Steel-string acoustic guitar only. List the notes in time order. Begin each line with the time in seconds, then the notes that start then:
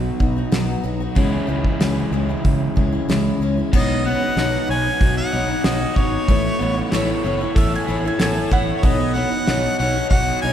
Already playing: B3 D#4 F#4
0.20 F#3 B3 D#4 F#4
0.36 B3 D#4 F#4
0.52 B2 F#3 B3 D#4 F#4
0.84 F#3 B3 D#4 F#4
1.00 B3 D#4 F#4
1.15 C#3 E3 G#3 C#4 E4
1.47 E3 G#3 C#4 E4
1.80 C#3 E3 G#3 C#4 E4
2.12 E3 G#3 C#4 E4
2.29 G#3 C#4 E4
2.76 E3 G#3 C#4 E4
2.92 G#3 C#4 E4
3.09 C#3 E3 G#3 C#4 E4
3.41 E3 G#3 C#4 E4
3.57 G#3 C#4 E4
3.73 B3 D#4 F#4 C#5
4.05 B3 D#4 F#4 C#5
4.21 D#4 F#4 C#5
4.38 B3 D#4 F#4 C#5
4.71 B3 D#4 F#4 C#5
4.86 D#4 F#4 C#5
5.33 B3 D#4 F#4 C#5
5.49 D#4 F#4 C#5
5.64 B3 D#4 F#4 C#5
5.81 D#4 F#4 C#5
5.97 B3 D#4 F#4 C#5
6.29 A3 B3 E4 A4 C#5
6.60 B3 E4 A4 C#5
6.77 E4 A4 C#5
6.93 A3 B3 E4 A4 C#5
7.24 B3 E4 A4 C#5
7.41 E4 A4 C#5
7.88 B3 E4 A4 C#5
8.04 E4 A4 C#5
8.20 A3 B3 E4 A4 C#5
8.34 E4 A4 C#5
8.50 B3 E4 A4 C#5
8.84 B3 D#4 F#4 C#5
9.00 D#4 F#4 C#5
9.15 B3 D#4 F#4 C#5
9.31 D#4 F#4 C#5
9.48 B3 D#4 F#4 C#5
9.81 B3 D#4 F#4 C#5
9.96 D#4 F#4 C#5
10.44 B3 D#4 F#4 C#5